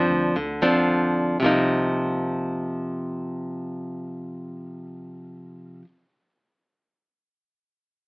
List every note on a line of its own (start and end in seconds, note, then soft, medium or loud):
0.00 0.33 G2 soft
0.00 0.35 F3 medium
0.00 0.36 C4 soft
0.00 0.36 D4 medium
0.10 0.34 D2 medium
0.36 1.38 D2 medium
0.36 1.39 D3 soft
0.62 1.37 F3 medium
0.62 1.37 C4 medium
0.62 1.37 D4 medium
1.40 5.80 C2 medium
1.40 5.82 C3 soft
1.40 5.84 F3 medium
1.44 5.86 A#3 medium
1.44 5.88 D#4 medium